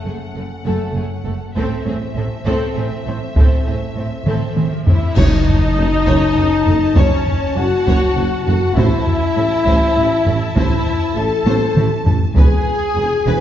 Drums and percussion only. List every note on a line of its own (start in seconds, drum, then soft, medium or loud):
1.56 taiko medium
2.47 taiko soft
3.36 taiko medium
4.26 taiko mid medium
4.56 taiko mid medium
4.87 taiko low medium
5.16 concert bass drum medium
5.16 taiko medium
5.16 crash medium
5.47 taiko low medium
6.07 taiko medium
6.67 taiko low soft
6.97 taiko medium
7.27 taiko low medium
7.87 taiko medium
8.47 taiko low soft
8.77 taiko medium
9.07 taiko low soft
9.67 taiko medium
10.26 taiko low soft
10.57 taiko medium
10.87 taiko low soft
11.47 taiko high medium
11.77 taiko mid medium
12.06 taiko low medium
12.36 taiko medium
13.26 taiko medium